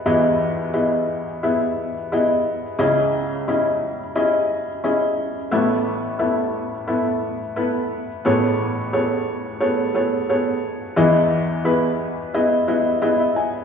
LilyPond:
<<
  \new Staff \with { instrumentName = "Felt piano" } { \time 4/4 \key a \lydian \tempo 4 = 88 << { r1 | r1 | r1 | r1 |
r2. dis''16 e''16 gis''8 | } \\ { <b e' gis' dis''>8. r16 <b e' gis' dis''>8. r16 <b e' gis' e''>8. r16 <b e' gis' dis''>8. r16 | <cis' e' gis' dis''>8. r16 <cis' e' gis' dis''>8. r16 <cis' e' gis' dis''>8. r16 <cis' e' gis' dis''>8. r16 | <b e' a' e''>8. r16 <b e' a' e''>8. r16 <b e' a' e''>8. r16 <b e' a' b'>8. r16 | <b gis' a' cis''>8. r16 <b gis' a' cis''>8. r16 <b gis' a' cis''>8 <b gis' a' cis''>8 <b gis' a' cis''>8. r16 |
<b e' gis' dis''>8. r16 <b e' gis' b'>8. r16 <b e' gis' dis''>8 <b e' gis' dis''>8 <b e' gis'>8. r16 | } >> }
  \new Staff \with { instrumentName = "Felt piano" } { \clef bass \time 4/4 \key a \lydian <e, e>1 | <cis, cis>1 | <a,, a,>1 | <a,, a,>1 |
<e, e>1 | }
>>